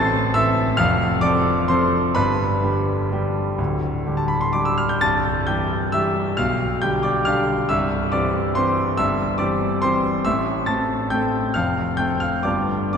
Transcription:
Already playing: A1 A2 E3 C4 A4 A5 C6 A6 C7
0.34 E3 C4 A4 E5 E6
0.77 F1 F2 F5 F6
1.21 F3 C4 A4 D5 D6
1.68 F3 C4 A4 C5 C6
2.15 G1 G2 B4 B5
2.63 D3 G3 G4
3.12 D3 G3 G4
3.58 D1 D2
4.06 D3 G3 G4
4.17 A5
4.28 B5
4.41 C6
4.53 D3 G3 G4 D6
4.65 E6
4.78 F6
4.89 G6
5.01 C1 C2 A5 A6
5.47 E3 G3 G4 G5 G6
5.92 E3 G3 G4 E5 E6
6.37 B1 B2 F5 F6
6.82 D3 G3 G4 G5 G6
7.03 D5 D6
7.25 D3 G3 G4 F5 F6
7.69 C1 C2 E5 E6
8.12 E3 C4 G4 D5 D6
8.55 E3 C4 G4 C5 C6
8.97 G1 G2 E5 E6
9.38 E3 C4 G4 D5 D6
9.82 E3 C4 G4 C5 C6
10.25 A1 A2 E5 E6
10.66 A3 C4 A4 A5 A6
11.10 A3 C4 A4 G5 G6
11.54 F1 F2 F5 F6
11.97 A3 C4 A4 G5 G6
12.20 F5 F6
12.43 G1 G2 G3 B3 F4 D5 D6
12.93 D6

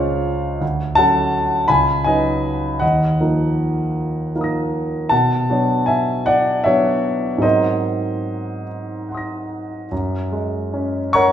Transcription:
Already playing: C#2 G#3 C#4 F4 C5 C#5 F5
0.61 D2
0.95 F#3 C#4 F#4 A4 F#5 A5
1.68 C#2 G#5 B5
2.04 F#3 C#4 D#4 B4 D#5 G#5
2.80 D#2 D#5 F#5
3.21 F3 A#3 D#4 A#4
4.35 F3 A#3 D#4 A#4 F5 A#5
4.41 D#6 A#6
5.09 B2 F#5 A5
5.50 F#3 B3 D4 C#5
5.86 E5 G#5
6.26 D5 F#5
6.64 F#3 B3 D4 C#5 E5
7.38 G#2 F#3 C4 D#4 D#5
7.43 A#4 C5
9.09 F#5 C6
9.14 D#6 A#6
9.92 F#2
10.32 G#3
10.74 C#4
11.13 A#4 C#5 F#5 A#5 C#6

